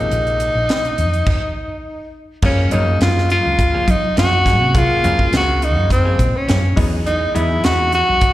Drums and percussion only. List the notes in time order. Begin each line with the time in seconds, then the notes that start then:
0.11 closed hi-hat
0.27 closed hi-hat
0.40 closed hi-hat
0.69 snare, closed hi-hat
0.85 closed hi-hat
0.98 closed hi-hat
1.13 closed hi-hat
1.26 kick, crash
2.42 kick, crash
2.71 closed hi-hat
3.01 snare, closed hi-hat
3.18 snare
3.30 closed hi-hat
3.59 kick, closed hi-hat
3.88 kick, closed hi-hat
4.17 snare, closed hi-hat
4.46 kick, snare, closed hi-hat
4.75 kick, closed hi-hat
5.04 closed hi-hat
5.19 kick
5.33 snare, closed hi-hat
5.62 closed hi-hat
5.90 kick, closed hi-hat
6.19 kick, closed hi-hat
6.49 snare, closed hi-hat
6.77 kick, open hi-hat
7.07 closed hi-hat
7.36 closed hi-hat
7.64 snare, closed hi-hat
7.92 closed hi-hat
8.21 kick, closed hi-hat